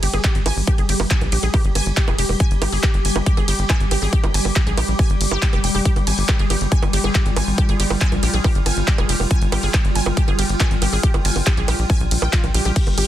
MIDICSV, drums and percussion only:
0, 0, Header, 1, 2, 480
1, 0, Start_track
1, 0, Tempo, 431655
1, 749, Time_signature, 4, 2, 24, 8
1, 14536, End_track
2, 0, Start_track
2, 0, Title_t, "Drums"
2, 30, Note_on_c, 9, 46, 115
2, 30, Note_on_c, 9, 51, 82
2, 141, Note_off_c, 9, 46, 0
2, 141, Note_off_c, 9, 51, 0
2, 150, Note_on_c, 9, 42, 42
2, 150, Note_on_c, 9, 60, 37
2, 261, Note_off_c, 9, 42, 0
2, 261, Note_off_c, 9, 60, 0
2, 270, Note_on_c, 9, 36, 121
2, 270, Note_on_c, 9, 39, 127
2, 270, Note_on_c, 9, 42, 96
2, 381, Note_off_c, 9, 36, 0
2, 381, Note_off_c, 9, 39, 0
2, 381, Note_off_c, 9, 42, 0
2, 390, Note_on_c, 9, 42, 42
2, 501, Note_off_c, 9, 42, 0
2, 510, Note_on_c, 9, 46, 108
2, 510, Note_on_c, 9, 51, 81
2, 510, Note_on_c, 9, 60, 80
2, 621, Note_off_c, 9, 46, 0
2, 621, Note_off_c, 9, 51, 0
2, 621, Note_off_c, 9, 60, 0
2, 750, Note_on_c, 9, 36, 125
2, 750, Note_on_c, 9, 42, 92
2, 750, Note_on_c, 9, 60, 40
2, 861, Note_off_c, 9, 36, 0
2, 861, Note_off_c, 9, 42, 0
2, 861, Note_off_c, 9, 60, 0
2, 870, Note_on_c, 9, 42, 42
2, 981, Note_off_c, 9, 42, 0
2, 990, Note_on_c, 9, 46, 112
2, 990, Note_on_c, 9, 51, 78
2, 1101, Note_off_c, 9, 46, 0
2, 1101, Note_off_c, 9, 51, 0
2, 1110, Note_on_c, 9, 46, 66
2, 1110, Note_on_c, 9, 60, 76
2, 1221, Note_off_c, 9, 46, 0
2, 1221, Note_off_c, 9, 60, 0
2, 1230, Note_on_c, 9, 36, 126
2, 1230, Note_on_c, 9, 39, 127
2, 1230, Note_on_c, 9, 42, 96
2, 1341, Note_off_c, 9, 36, 0
2, 1341, Note_off_c, 9, 39, 0
2, 1341, Note_off_c, 9, 42, 0
2, 1350, Note_on_c, 9, 42, 42
2, 1350, Note_on_c, 9, 60, 40
2, 1461, Note_off_c, 9, 42, 0
2, 1461, Note_off_c, 9, 60, 0
2, 1470, Note_on_c, 9, 46, 113
2, 1470, Note_on_c, 9, 51, 74
2, 1581, Note_off_c, 9, 46, 0
2, 1581, Note_off_c, 9, 51, 0
2, 1589, Note_on_c, 9, 42, 41
2, 1701, Note_off_c, 9, 42, 0
2, 1709, Note_on_c, 9, 46, 69
2, 1709, Note_on_c, 9, 60, 78
2, 1710, Note_on_c, 9, 36, 124
2, 1821, Note_off_c, 9, 36, 0
2, 1821, Note_off_c, 9, 46, 0
2, 1821, Note_off_c, 9, 60, 0
2, 1830, Note_on_c, 9, 42, 41
2, 1941, Note_off_c, 9, 42, 0
2, 1950, Note_on_c, 9, 46, 116
2, 1950, Note_on_c, 9, 51, 78
2, 1950, Note_on_c, 9, 60, 41
2, 2061, Note_off_c, 9, 46, 0
2, 2061, Note_off_c, 9, 51, 0
2, 2061, Note_off_c, 9, 60, 0
2, 2070, Note_on_c, 9, 42, 38
2, 2181, Note_off_c, 9, 42, 0
2, 2190, Note_on_c, 9, 36, 119
2, 2190, Note_on_c, 9, 39, 127
2, 2190, Note_on_c, 9, 42, 93
2, 2301, Note_off_c, 9, 36, 0
2, 2301, Note_off_c, 9, 39, 0
2, 2301, Note_off_c, 9, 42, 0
2, 2310, Note_on_c, 9, 42, 41
2, 2310, Note_on_c, 9, 60, 76
2, 2421, Note_off_c, 9, 42, 0
2, 2421, Note_off_c, 9, 60, 0
2, 2430, Note_on_c, 9, 46, 115
2, 2430, Note_on_c, 9, 51, 78
2, 2541, Note_off_c, 9, 46, 0
2, 2541, Note_off_c, 9, 51, 0
2, 2550, Note_on_c, 9, 60, 39
2, 2661, Note_off_c, 9, 60, 0
2, 2670, Note_on_c, 9, 36, 124
2, 2670, Note_on_c, 9, 42, 91
2, 2781, Note_off_c, 9, 36, 0
2, 2781, Note_off_c, 9, 42, 0
2, 2790, Note_on_c, 9, 42, 40
2, 2901, Note_off_c, 9, 42, 0
2, 2910, Note_on_c, 9, 46, 116
2, 2910, Note_on_c, 9, 51, 77
2, 2910, Note_on_c, 9, 60, 81
2, 3021, Note_off_c, 9, 46, 0
2, 3021, Note_off_c, 9, 51, 0
2, 3021, Note_off_c, 9, 60, 0
2, 3030, Note_on_c, 9, 46, 65
2, 3141, Note_off_c, 9, 46, 0
2, 3150, Note_on_c, 9, 36, 126
2, 3150, Note_on_c, 9, 39, 126
2, 3150, Note_on_c, 9, 42, 97
2, 3150, Note_on_c, 9, 60, 39
2, 3261, Note_off_c, 9, 36, 0
2, 3261, Note_off_c, 9, 39, 0
2, 3261, Note_off_c, 9, 42, 0
2, 3261, Note_off_c, 9, 60, 0
2, 3270, Note_on_c, 9, 42, 40
2, 3381, Note_off_c, 9, 42, 0
2, 3390, Note_on_c, 9, 46, 114
2, 3390, Note_on_c, 9, 51, 74
2, 3501, Note_off_c, 9, 46, 0
2, 3501, Note_off_c, 9, 51, 0
2, 3510, Note_on_c, 9, 42, 38
2, 3510, Note_on_c, 9, 60, 77
2, 3621, Note_off_c, 9, 42, 0
2, 3621, Note_off_c, 9, 60, 0
2, 3630, Note_on_c, 9, 36, 127
2, 3630, Note_on_c, 9, 42, 94
2, 3741, Note_off_c, 9, 36, 0
2, 3741, Note_off_c, 9, 42, 0
2, 3750, Note_on_c, 9, 42, 36
2, 3750, Note_on_c, 9, 60, 37
2, 3861, Note_off_c, 9, 42, 0
2, 3861, Note_off_c, 9, 60, 0
2, 3870, Note_on_c, 9, 46, 118
2, 3870, Note_on_c, 9, 51, 78
2, 3981, Note_off_c, 9, 46, 0
2, 3981, Note_off_c, 9, 51, 0
2, 3990, Note_on_c, 9, 42, 38
2, 4101, Note_off_c, 9, 42, 0
2, 4110, Note_on_c, 9, 36, 125
2, 4110, Note_on_c, 9, 39, 127
2, 4110, Note_on_c, 9, 42, 90
2, 4110, Note_on_c, 9, 60, 79
2, 4221, Note_off_c, 9, 36, 0
2, 4221, Note_off_c, 9, 39, 0
2, 4221, Note_off_c, 9, 42, 0
2, 4221, Note_off_c, 9, 60, 0
2, 4230, Note_on_c, 9, 42, 39
2, 4341, Note_off_c, 9, 42, 0
2, 4350, Note_on_c, 9, 46, 114
2, 4350, Note_on_c, 9, 51, 77
2, 4350, Note_on_c, 9, 60, 41
2, 4461, Note_off_c, 9, 46, 0
2, 4461, Note_off_c, 9, 51, 0
2, 4461, Note_off_c, 9, 60, 0
2, 4590, Note_on_c, 9, 36, 127
2, 4590, Note_on_c, 9, 42, 90
2, 4701, Note_off_c, 9, 36, 0
2, 4701, Note_off_c, 9, 42, 0
2, 4710, Note_on_c, 9, 42, 38
2, 4710, Note_on_c, 9, 60, 85
2, 4821, Note_off_c, 9, 42, 0
2, 4821, Note_off_c, 9, 60, 0
2, 4830, Note_on_c, 9, 46, 111
2, 4830, Note_on_c, 9, 51, 79
2, 4941, Note_off_c, 9, 46, 0
2, 4941, Note_off_c, 9, 51, 0
2, 4950, Note_on_c, 9, 46, 66
2, 4950, Note_on_c, 9, 60, 42
2, 5061, Note_off_c, 9, 46, 0
2, 5061, Note_off_c, 9, 60, 0
2, 5070, Note_on_c, 9, 36, 127
2, 5070, Note_on_c, 9, 39, 123
2, 5070, Note_on_c, 9, 42, 92
2, 5181, Note_off_c, 9, 36, 0
2, 5181, Note_off_c, 9, 39, 0
2, 5181, Note_off_c, 9, 42, 0
2, 5190, Note_on_c, 9, 42, 39
2, 5301, Note_off_c, 9, 42, 0
2, 5310, Note_on_c, 9, 46, 114
2, 5310, Note_on_c, 9, 51, 79
2, 5310, Note_on_c, 9, 60, 83
2, 5421, Note_off_c, 9, 46, 0
2, 5421, Note_off_c, 9, 51, 0
2, 5421, Note_off_c, 9, 60, 0
2, 5430, Note_on_c, 9, 42, 38
2, 5541, Note_off_c, 9, 42, 0
2, 5550, Note_on_c, 9, 36, 124
2, 5550, Note_on_c, 9, 46, 65
2, 5550, Note_on_c, 9, 60, 40
2, 5661, Note_off_c, 9, 36, 0
2, 5661, Note_off_c, 9, 46, 0
2, 5661, Note_off_c, 9, 60, 0
2, 5670, Note_on_c, 9, 42, 38
2, 5781, Note_off_c, 9, 42, 0
2, 5790, Note_on_c, 9, 46, 118
2, 5790, Note_on_c, 9, 51, 79
2, 5901, Note_off_c, 9, 46, 0
2, 5901, Note_off_c, 9, 51, 0
2, 5910, Note_on_c, 9, 60, 84
2, 6021, Note_off_c, 9, 60, 0
2, 6030, Note_on_c, 9, 36, 120
2, 6030, Note_on_c, 9, 39, 121
2, 6030, Note_on_c, 9, 42, 89
2, 6141, Note_off_c, 9, 36, 0
2, 6141, Note_off_c, 9, 39, 0
2, 6141, Note_off_c, 9, 42, 0
2, 6150, Note_on_c, 9, 42, 37
2, 6150, Note_on_c, 9, 60, 42
2, 6261, Note_off_c, 9, 42, 0
2, 6261, Note_off_c, 9, 60, 0
2, 6270, Note_on_c, 9, 46, 114
2, 6270, Note_on_c, 9, 51, 78
2, 6381, Note_off_c, 9, 46, 0
2, 6381, Note_off_c, 9, 51, 0
2, 6510, Note_on_c, 9, 36, 118
2, 6510, Note_on_c, 9, 42, 90
2, 6621, Note_off_c, 9, 36, 0
2, 6621, Note_off_c, 9, 42, 0
2, 6630, Note_on_c, 9, 42, 38
2, 6630, Note_on_c, 9, 60, 43
2, 6741, Note_off_c, 9, 42, 0
2, 6741, Note_off_c, 9, 60, 0
2, 6750, Note_on_c, 9, 46, 112
2, 6750, Note_on_c, 9, 51, 84
2, 6861, Note_off_c, 9, 46, 0
2, 6861, Note_off_c, 9, 51, 0
2, 6870, Note_on_c, 9, 46, 62
2, 6981, Note_off_c, 9, 46, 0
2, 6990, Note_on_c, 9, 36, 125
2, 6990, Note_on_c, 9, 39, 118
2, 6990, Note_on_c, 9, 60, 87
2, 7101, Note_off_c, 9, 36, 0
2, 7101, Note_off_c, 9, 39, 0
2, 7101, Note_off_c, 9, 60, 0
2, 7110, Note_on_c, 9, 42, 40
2, 7221, Note_off_c, 9, 42, 0
2, 7230, Note_on_c, 9, 46, 103
2, 7230, Note_on_c, 9, 51, 81
2, 7230, Note_on_c, 9, 60, 42
2, 7341, Note_off_c, 9, 46, 0
2, 7341, Note_off_c, 9, 51, 0
2, 7341, Note_off_c, 9, 60, 0
2, 7350, Note_on_c, 9, 42, 39
2, 7461, Note_off_c, 9, 42, 0
2, 7470, Note_on_c, 9, 36, 125
2, 7470, Note_on_c, 9, 42, 92
2, 7581, Note_off_c, 9, 36, 0
2, 7581, Note_off_c, 9, 42, 0
2, 7590, Note_on_c, 9, 42, 37
2, 7590, Note_on_c, 9, 60, 81
2, 7701, Note_off_c, 9, 42, 0
2, 7701, Note_off_c, 9, 60, 0
2, 7710, Note_on_c, 9, 46, 112
2, 7710, Note_on_c, 9, 51, 83
2, 7821, Note_off_c, 9, 46, 0
2, 7821, Note_off_c, 9, 51, 0
2, 7830, Note_on_c, 9, 42, 38
2, 7830, Note_on_c, 9, 60, 41
2, 7941, Note_off_c, 9, 42, 0
2, 7941, Note_off_c, 9, 60, 0
2, 7950, Note_on_c, 9, 36, 116
2, 7950, Note_on_c, 9, 39, 118
2, 7950, Note_on_c, 9, 42, 89
2, 8061, Note_off_c, 9, 36, 0
2, 8061, Note_off_c, 9, 39, 0
2, 8061, Note_off_c, 9, 42, 0
2, 8070, Note_on_c, 9, 42, 39
2, 8181, Note_off_c, 9, 42, 0
2, 8190, Note_on_c, 9, 46, 113
2, 8190, Note_on_c, 9, 51, 82
2, 8190, Note_on_c, 9, 60, 86
2, 8301, Note_off_c, 9, 46, 0
2, 8301, Note_off_c, 9, 51, 0
2, 8301, Note_off_c, 9, 60, 0
2, 8430, Note_on_c, 9, 36, 116
2, 8430, Note_on_c, 9, 42, 93
2, 8430, Note_on_c, 9, 60, 44
2, 8541, Note_off_c, 9, 36, 0
2, 8541, Note_off_c, 9, 42, 0
2, 8541, Note_off_c, 9, 60, 0
2, 8550, Note_on_c, 9, 42, 41
2, 8661, Note_off_c, 9, 42, 0
2, 8670, Note_on_c, 9, 46, 108
2, 8670, Note_on_c, 9, 51, 87
2, 8781, Note_off_c, 9, 46, 0
2, 8781, Note_off_c, 9, 51, 0
2, 8790, Note_on_c, 9, 46, 64
2, 8790, Note_on_c, 9, 60, 89
2, 8901, Note_off_c, 9, 46, 0
2, 8901, Note_off_c, 9, 60, 0
2, 8910, Note_on_c, 9, 36, 114
2, 8910, Note_on_c, 9, 39, 114
2, 8910, Note_on_c, 9, 42, 97
2, 9021, Note_off_c, 9, 36, 0
2, 9021, Note_off_c, 9, 39, 0
2, 9021, Note_off_c, 9, 42, 0
2, 9030, Note_on_c, 9, 42, 41
2, 9030, Note_on_c, 9, 60, 46
2, 9141, Note_off_c, 9, 42, 0
2, 9141, Note_off_c, 9, 60, 0
2, 9150, Note_on_c, 9, 46, 105
2, 9150, Note_on_c, 9, 51, 81
2, 9261, Note_off_c, 9, 46, 0
2, 9261, Note_off_c, 9, 51, 0
2, 9270, Note_on_c, 9, 42, 40
2, 9381, Note_off_c, 9, 42, 0
2, 9390, Note_on_c, 9, 36, 116
2, 9390, Note_on_c, 9, 46, 60
2, 9390, Note_on_c, 9, 60, 85
2, 9501, Note_off_c, 9, 36, 0
2, 9501, Note_off_c, 9, 46, 0
2, 9501, Note_off_c, 9, 60, 0
2, 9510, Note_on_c, 9, 42, 38
2, 9621, Note_off_c, 9, 42, 0
2, 9630, Note_on_c, 9, 46, 106
2, 9630, Note_on_c, 9, 51, 86
2, 9630, Note_on_c, 9, 60, 44
2, 9741, Note_off_c, 9, 46, 0
2, 9741, Note_off_c, 9, 51, 0
2, 9741, Note_off_c, 9, 60, 0
2, 9750, Note_on_c, 9, 42, 39
2, 9861, Note_off_c, 9, 42, 0
2, 9870, Note_on_c, 9, 36, 108
2, 9870, Note_on_c, 9, 39, 113
2, 9870, Note_on_c, 9, 42, 91
2, 9981, Note_off_c, 9, 36, 0
2, 9981, Note_off_c, 9, 39, 0
2, 9981, Note_off_c, 9, 42, 0
2, 9990, Note_on_c, 9, 42, 40
2, 9990, Note_on_c, 9, 60, 85
2, 10101, Note_off_c, 9, 42, 0
2, 10101, Note_off_c, 9, 60, 0
2, 10110, Note_on_c, 9, 46, 103
2, 10110, Note_on_c, 9, 51, 85
2, 10221, Note_off_c, 9, 46, 0
2, 10221, Note_off_c, 9, 51, 0
2, 10230, Note_on_c, 9, 60, 42
2, 10341, Note_off_c, 9, 60, 0
2, 10349, Note_on_c, 9, 42, 99
2, 10350, Note_on_c, 9, 36, 112
2, 10461, Note_off_c, 9, 36, 0
2, 10461, Note_off_c, 9, 42, 0
2, 10470, Note_on_c, 9, 42, 41
2, 10581, Note_off_c, 9, 42, 0
2, 10590, Note_on_c, 9, 46, 107
2, 10590, Note_on_c, 9, 51, 87
2, 10590, Note_on_c, 9, 60, 86
2, 10701, Note_off_c, 9, 46, 0
2, 10701, Note_off_c, 9, 51, 0
2, 10701, Note_off_c, 9, 60, 0
2, 10710, Note_on_c, 9, 46, 59
2, 10821, Note_off_c, 9, 46, 0
2, 10830, Note_on_c, 9, 36, 120
2, 10830, Note_on_c, 9, 39, 120
2, 10830, Note_on_c, 9, 42, 99
2, 10830, Note_on_c, 9, 60, 41
2, 10941, Note_off_c, 9, 36, 0
2, 10941, Note_off_c, 9, 39, 0
2, 10941, Note_off_c, 9, 42, 0
2, 10941, Note_off_c, 9, 60, 0
2, 10950, Note_on_c, 9, 42, 43
2, 11061, Note_off_c, 9, 42, 0
2, 11070, Note_on_c, 9, 46, 104
2, 11070, Note_on_c, 9, 51, 81
2, 11181, Note_off_c, 9, 46, 0
2, 11181, Note_off_c, 9, 51, 0
2, 11190, Note_on_c, 9, 42, 42
2, 11190, Note_on_c, 9, 60, 84
2, 11301, Note_off_c, 9, 42, 0
2, 11301, Note_off_c, 9, 60, 0
2, 11310, Note_on_c, 9, 36, 113
2, 11310, Note_on_c, 9, 42, 99
2, 11421, Note_off_c, 9, 36, 0
2, 11421, Note_off_c, 9, 42, 0
2, 11430, Note_on_c, 9, 42, 38
2, 11430, Note_on_c, 9, 60, 37
2, 11541, Note_off_c, 9, 42, 0
2, 11541, Note_off_c, 9, 60, 0
2, 11550, Note_on_c, 9, 46, 104
2, 11550, Note_on_c, 9, 51, 88
2, 11661, Note_off_c, 9, 46, 0
2, 11661, Note_off_c, 9, 51, 0
2, 11670, Note_on_c, 9, 42, 40
2, 11781, Note_off_c, 9, 42, 0
2, 11790, Note_on_c, 9, 36, 110
2, 11790, Note_on_c, 9, 39, 120
2, 11790, Note_on_c, 9, 42, 98
2, 11790, Note_on_c, 9, 60, 82
2, 11901, Note_off_c, 9, 36, 0
2, 11901, Note_off_c, 9, 39, 0
2, 11901, Note_off_c, 9, 42, 0
2, 11901, Note_off_c, 9, 60, 0
2, 11910, Note_on_c, 9, 42, 40
2, 12021, Note_off_c, 9, 42, 0
2, 12030, Note_on_c, 9, 46, 107
2, 12030, Note_on_c, 9, 51, 87
2, 12030, Note_on_c, 9, 60, 41
2, 12141, Note_off_c, 9, 46, 0
2, 12141, Note_off_c, 9, 51, 0
2, 12141, Note_off_c, 9, 60, 0
2, 12270, Note_on_c, 9, 36, 119
2, 12270, Note_on_c, 9, 42, 104
2, 12381, Note_off_c, 9, 36, 0
2, 12381, Note_off_c, 9, 42, 0
2, 12390, Note_on_c, 9, 42, 43
2, 12390, Note_on_c, 9, 60, 81
2, 12501, Note_off_c, 9, 42, 0
2, 12501, Note_off_c, 9, 60, 0
2, 12509, Note_on_c, 9, 46, 104
2, 12509, Note_on_c, 9, 51, 82
2, 12621, Note_off_c, 9, 46, 0
2, 12621, Note_off_c, 9, 51, 0
2, 12630, Note_on_c, 9, 46, 61
2, 12630, Note_on_c, 9, 60, 41
2, 12741, Note_off_c, 9, 46, 0
2, 12741, Note_off_c, 9, 60, 0
2, 12750, Note_on_c, 9, 36, 118
2, 12750, Note_on_c, 9, 39, 123
2, 12750, Note_on_c, 9, 42, 101
2, 12861, Note_off_c, 9, 36, 0
2, 12861, Note_off_c, 9, 39, 0
2, 12861, Note_off_c, 9, 42, 0
2, 12870, Note_on_c, 9, 42, 44
2, 12981, Note_off_c, 9, 42, 0
2, 12989, Note_on_c, 9, 46, 104
2, 12989, Note_on_c, 9, 51, 82
2, 12989, Note_on_c, 9, 60, 75
2, 13101, Note_off_c, 9, 46, 0
2, 13101, Note_off_c, 9, 51, 0
2, 13101, Note_off_c, 9, 60, 0
2, 13109, Note_on_c, 9, 42, 45
2, 13221, Note_off_c, 9, 42, 0
2, 13229, Note_on_c, 9, 46, 64
2, 13229, Note_on_c, 9, 60, 40
2, 13230, Note_on_c, 9, 36, 110
2, 13341, Note_off_c, 9, 36, 0
2, 13341, Note_off_c, 9, 46, 0
2, 13341, Note_off_c, 9, 60, 0
2, 13349, Note_on_c, 9, 42, 42
2, 13461, Note_off_c, 9, 42, 0
2, 13470, Note_on_c, 9, 46, 106
2, 13470, Note_on_c, 9, 51, 83
2, 13581, Note_off_c, 9, 46, 0
2, 13581, Note_off_c, 9, 51, 0
2, 13590, Note_on_c, 9, 42, 41
2, 13590, Note_on_c, 9, 60, 77
2, 13701, Note_off_c, 9, 42, 0
2, 13701, Note_off_c, 9, 60, 0
2, 13710, Note_on_c, 9, 36, 119
2, 13710, Note_on_c, 9, 39, 122
2, 13710, Note_on_c, 9, 42, 98
2, 13821, Note_off_c, 9, 36, 0
2, 13821, Note_off_c, 9, 39, 0
2, 13821, Note_off_c, 9, 42, 0
2, 13830, Note_on_c, 9, 42, 44
2, 13830, Note_on_c, 9, 60, 42
2, 13941, Note_off_c, 9, 42, 0
2, 13941, Note_off_c, 9, 60, 0
2, 13949, Note_on_c, 9, 46, 104
2, 13949, Note_on_c, 9, 51, 85
2, 14061, Note_off_c, 9, 46, 0
2, 14061, Note_off_c, 9, 51, 0
2, 14070, Note_on_c, 9, 42, 39
2, 14181, Note_off_c, 9, 42, 0
2, 14190, Note_on_c, 9, 36, 121
2, 14190, Note_on_c, 9, 42, 96
2, 14190, Note_on_c, 9, 49, 78
2, 14301, Note_off_c, 9, 36, 0
2, 14301, Note_off_c, 9, 42, 0
2, 14301, Note_off_c, 9, 49, 0
2, 14310, Note_on_c, 9, 42, 41
2, 14310, Note_on_c, 9, 60, 39
2, 14421, Note_off_c, 9, 42, 0
2, 14421, Note_off_c, 9, 60, 0
2, 14430, Note_on_c, 9, 46, 113
2, 14430, Note_on_c, 9, 51, 84
2, 14536, Note_off_c, 9, 46, 0
2, 14536, Note_off_c, 9, 51, 0
2, 14536, End_track
0, 0, End_of_file